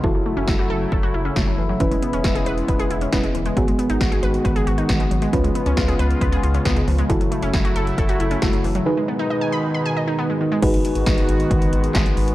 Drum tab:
CC |----------------|----------------|----------------|----------------|
HH |----------------|xxxxxxxxxxxxxxxx|xxxxxxxxxxxxxxxx|xxxxxxxxxxxxxxox|
CP |----------------|----------------|----------------|----------------|
SD |----o-------o---|----o-------o---|----o-------o---|----o-------o---|
BD |o---o---o---o---|o---o---o---o---|o---o---o---o---|o---o---o---o---|

CC |----------------|----------------|x---------------|
HH |xxxxxxxxxxxxxxox|----------------|xxxxxxxxxxxxxxox|
CP |----------------|----------------|------------x---|
SD |----o-------o---|----------------|----o-------o---|
BD |o---o---o---o---|----------------|o---o---o---o---|